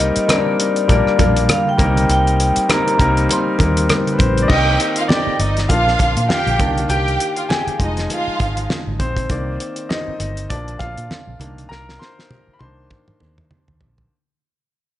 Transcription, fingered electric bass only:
Already playing: C2
0.16 muted fingered electric bass stroke
0.89 A#1
1.19 A#1
1.79 C2
2.09 C2
2.57 muted fingered electric bass stroke
3.00 C2
3.60 D#2
4.20 A#1
4.50 C2
5.27 muted fingered electric bass stroke
5.39 G1
5.70 A#1
6.00 A#1
6.17 A#2
6.46 A#1
6.60 C2
6.89 C2
7.67 muted fingered electric bass stroke
7.79 F1
8.27 muted fingered electric bass stroke
8.40 G#1
8.87 G#1
9.00 A#1
9.30 C2
10.08 muted fingered electric bass stroke
10.20 G1
10.50 A#1
10.80 A#1
10.97 A#2
11.27 A#1
11.39 C2
11.70 C2
12.48 muted fingered electric bass stroke
12.61 C2
13.08 muted fingered electric bass stroke
13.21 D#2
13.69 D#2
13.81 A#1

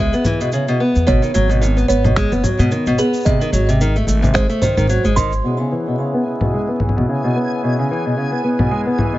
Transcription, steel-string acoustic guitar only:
0.00 G#3
0.14 B3
0.26 E3
0.41 B2
0.53 C#3
0.68 B2
0.80 B3
1.07 B2
1.22 D#3
1.34 F#3
1.50 B2
1.61 D#3
1.77 B3
1.88 B3
2.04 B2
2.17 G#3
2.32 B3
2.44 F#3
2.59 B2
2.72 D#3
2.87 B2
2.98 B3
3.26 C3
3.41 D#3
3.53 F#3
3.69 C3
3.81 D#3
3.96 A3
4.08 A3
4.22 C3
4.34 G#3
4.49 A3
4.63 D#3
4.78 D#3
4.89 F#3
5.05 G#3
5.16 D#3
5.44 B2
5.60 C#3
5.72 E3
5.88 B2
5.99 C#3
6.14 B3
6.26 B3
6.42 B2
6.54 G#3
6.68 B3
6.81 E3
6.96 B2
7.09 C#3
7.24 B2
7.36 B3
7.63 B2
7.79 C#3
7.91 E3
8.06 B2
8.17 C#3
8.32 B3
8.44 B3
8.59 B2
8.71 G#3
8.86 B3
8.98 E3
9.13 B2

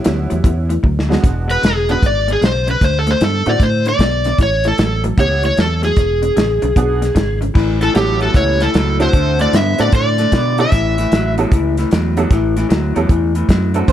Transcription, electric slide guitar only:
1.51 B4
1.66 G#4
1.91 B4
2.06 D5
2.33 G#4
2.45 C5
2.71 B4
2.85 C5
2.99 A4
3.11 C5
3.24 A4
3.49 D5
3.63 C5
3.89 D5
4.43 C#5
4.68 A4
5.20 C#5
5.46 C#5
5.60 A4
5.85 G#4
7.83 A4
7.96 G4
8.23 A4
8.36 C#5
8.62 A4
9.02 C5
9.41 D5
9.56 E5
9.80 D5
9.95 D5
10.61 E5

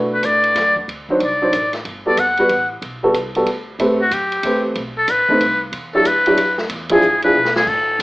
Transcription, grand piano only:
Already playing: A3 D4 F#4 B4
1.10 F#3 D4 D#4 C5
1.42 F#3 D4 D#4 C5
2.06 G3 B3 F#4 A4
2.39 G3 B3 F#4 B4
3.03 G3 B3 F#4 A4
3.36 G3 B3 F#4 A4
3.80 A3 C4 G4 B4
4.45 A3 C4 G4 B4
5.30 A3 C4 D#4 B4
5.94 F#3 D4 E4 G4
6.27 F#3 D4 E4 G4
6.91 F3 D4 E4 G#4
7.24 F3 D4 E4 G#4

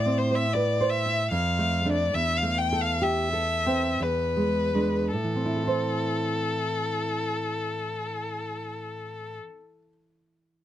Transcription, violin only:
0.00 D5
0.18 C5
0.35 E5
0.53 D5
0.90 E5
1.31 F5
1.92 D5
2.14 E5
2.37 F5
2.58 G5
2.81 F5
3.03 E5
4.03 B4
5.13 A4

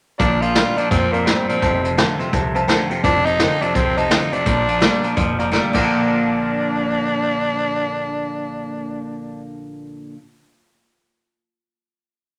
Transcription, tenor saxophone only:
0.19 D4
0.42 F4
0.77 D4
0.90 C4
1.13 A#3
1.27 C4
1.49 C4
3.03 D4
3.26 D#4
3.62 D4
3.75 C4
3.97 D#4
4.33 D4
5.74 D4

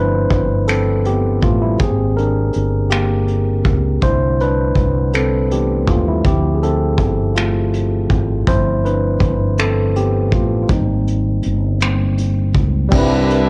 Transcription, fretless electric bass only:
Already playing: G1
0.32 G1
1.43 A1
1.81 G#1
2.56 G1
3.66 C#2
4.03 C2
4.77 C2
5.89 D#2
6.26 D2
6.99 G1
8.11 G#1
8.48 G1
9.21 G1
10.33 A1
10.70 G#1
11.46 G1
12.56 C#2
12.93 C2

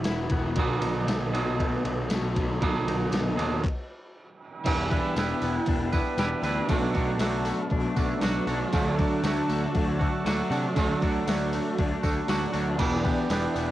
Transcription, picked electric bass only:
0.06 E1
0.30 E1
0.57 B1
0.82 B1
1.07 B1
1.33 B1
1.59 B2
1.85 B1
2.11 B1
2.37 B1
2.62 B1
2.86 B1
3.11 B1
3.37 D#2
4.66 E1
5.16 E1
5.42 E1
5.68 E1
6.18 E1
6.43 D2
6.70 B1
6.95 B1
7.18 B1
7.72 B1
7.97 B1
8.22 B1
8.47 B1
8.74 D2
9.23 D2
9.49 D2
9.76 D2
10.25 D2
10.50 C3
10.76 D2
11.03 D2
11.27 D2
11.79 D2
12.03 D2
12.29 D2
12.54 D2
12.79 E1
13.30 E1
13.55 E1

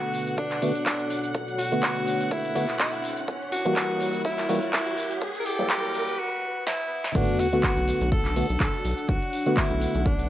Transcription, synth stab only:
Already playing: D3 A3 B3 F#4
0.62 D3 A3 B3 F#4
1.72 D3 A3 B3 F#4
2.55 D3 A3 B3 F#4
3.65 E3 G3 A#3 F#4
4.49 E3 G3 A#3 F#4
5.59 E3 F#3 G3 A#3
7.15 D3 A3 B3 F#4
7.53 D3 A3 B3 F#4
8.36 D3 A3 B3 F#4
9.46 D3 A3 B3 F#4

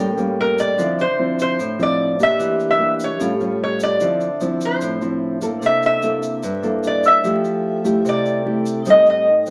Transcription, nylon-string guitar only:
Already playing: A2
0.17 G3 A#3 C#4
0.78 D3 F3 C4 E4
1.18 F3 C4 E4
1.59 A2
1.78 F3 C4 E4
2.19 A#3 D4 G4
2.39 E3
2.79 A#3 D4 G4
3.20 A2 G3 C#4 F4
3.40 G3 C#4 F4
4.01 D3 F3 C4 E4
4.41 F3 C4 E4
4.82 A2
5.01 F3 C4 E4
5.42 A#3 E4 A4
5.62 C3
6.03 A#3 E4 A4
6.43 G2
6.63 A#3 E4 A4
7.23 F3 A3 E4 G4
7.84 A3 E4 G4
8.05 C3
8.46 A3 E4 G4
8.86 A2 G3 C4 D#4
9.47 F#3

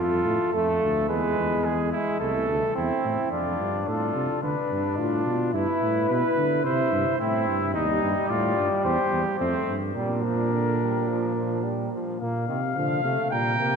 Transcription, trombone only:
Already playing: F4
0.54 A3
1.10 G#3
1.93 G#3
2.20 A3
2.75 C4
3.32 D4
4.43 D4
4.99 F4
5.53 E4
6.65 E4
7.19 C4
7.74 G3
9.40 A3
9.97 G3
10.24 F3
10.53 D3
10.81 G3
11.08 F3
11.36 F3
11.64 G3
11.93 F3
12.21 A#3
12.49 D#3
12.77 F3
13.04 A3
13.33 G3
13.59 A#3

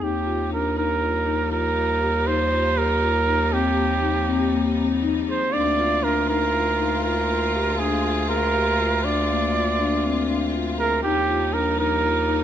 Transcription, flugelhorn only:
0.04 G4
0.53 A#4
0.78 A#4
1.52 A#4
2.27 C5
2.78 A#4
3.53 G4
5.28 C5
5.53 D5
6.04 A#4
6.29 A#4
7.04 A#4
7.79 G#4
8.30 A#4
9.04 D5
10.80 A#4
11.03 G4
11.54 A#4
11.79 A#4

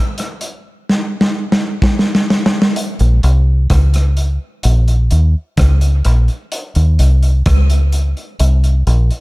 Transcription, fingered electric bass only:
3.01 A#1
3.24 C2
3.71 C#2
4.65 A#1
5.12 D#2
5.58 C#2
6.06 A#1
6.76 D#2
6.99 C2
7.46 C#2
8.40 C2
8.87 A#1

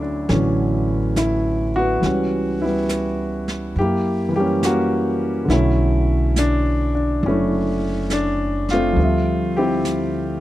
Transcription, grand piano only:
Already playing: D2 F#3 A3 C#4 D4 E4 C#5
0.02 D4
0.29 D3 E3 F#3 A3 B3 C#4
1.17 E4
1.76 B3 F#4
2.01 E3 G3 B3
2.05 C#4
2.62 G3 B3 E4
3.79 A#3 E4 G4
4.29 E3 G3
4.36 A#3 G4
4.40 C#4
4.65 A#3 C#4 F#4
5.45 D3 F#3
5.50 A3 C#4 E4
6.38 D4
6.95 D4
7.26 A3 C#4 E4
8.13 D4
8.71 A3 C4 F4
8.93 F3 G3
9.00 C4 E5
9.57 C4 E4 G4

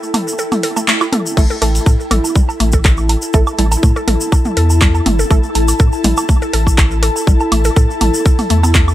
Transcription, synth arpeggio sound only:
0.39 A4
0.63 A4
0.77 A3
0.88 A3
1.01 E4
1.13 A4
1.37 A3
1.50 A4
1.62 A4
2.11 A4
2.35 G3
2.60 A3
2.73 A4
2.85 A4
3.34 A4
3.58 G3
3.83 A3
3.96 A4
4.08 A4
4.57 A4
4.81 G3
5.06 A3
5.19 A4
5.31 A4
5.80 A4
6.04 G3
6.29 A3
6.42 A4
6.53 A4
7.03 A4
7.27 G3
7.52 A3
7.65 A4
7.76 A4
8.26 A4
8.50 A3
8.63 B3
8.75 A3

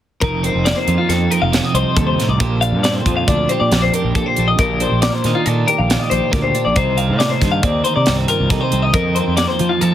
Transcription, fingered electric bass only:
0.22 F1
0.55 F1
0.87 F2
1.09 F2
1.42 F1
1.74 C2
1.97 D#2
2.28 C2
2.40 A#1
2.72 G2
3.06 F2
3.28 D2
3.61 A#2
3.71 A#1
4.04 A#1
4.38 A#1
4.58 A#1
4.91 A#1
5.24 A#2
5.46 A#2
5.79 A#1
6.11 A#1
6.33 D2
6.66 A#1
6.76 C2
7.09 A2
7.42 G2
7.63 D#2
7.96 C3
8.08 C2
8.40 C2
8.73 C2
8.94 F2
9.27 F2
9.60 F3
9.82 F3

